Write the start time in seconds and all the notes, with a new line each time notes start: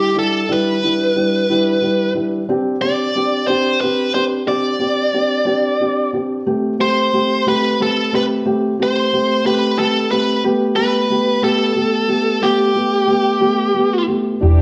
Already playing: G4
0.15 G3 D4 E4 A4
0.49 G3 D4 E4 B4
0.83 G3 D4 E4
1.15 G3 D4 E4
1.49 G3 D4 E4
1.82 G3 D4 E4
2.15 G3 D4 E4
2.49 C4 D4 G4
2.82 C4 D4 G4 D5
3.16 C4 D4 G4
3.47 C4 D4 G4 C5
3.81 C4 D4 G4 B4
4.14 C4 D4 G4 C5
4.47 C4 D4 G4 D5
4.79 C4 D4 G4
5.14 C4 D4 G4
5.45 C4 D4 G4
5.80 C4 D4 G4
6.13 C4 D4 G4
6.46 A3 C4 G4
6.79 A3 C4 G4 C5
7.13 A3 C4 G4
7.46 A3 C4 G4 B4
7.80 A3 C4 G4 A4
8.13 A3 C4 G4 B4
8.45 A3 C4 G4
8.79 A3 C4 G4 C5
9.13 A3 C4 G4
9.45 A3 C4 G4 B4
9.78 A3 C4 G4 A4
10.11 A3 C4 G4 B4
10.44 A3 B3 G4
10.76 A3 B3 G4 B4
11.10 A3 B3 G4
11.42 A3 B3 G4 A4
11.76 A3 B3 G4
12.08 A3 B3 G4
12.41 A3 B3 G4
12.75 A3 B3 G4
13.07 A3 B3 G4
13.40 A3 B3 G4
13.74 A3 B3 G4
14.08 A3 B3 G4
14.41 E1 E3 D4 E4 G4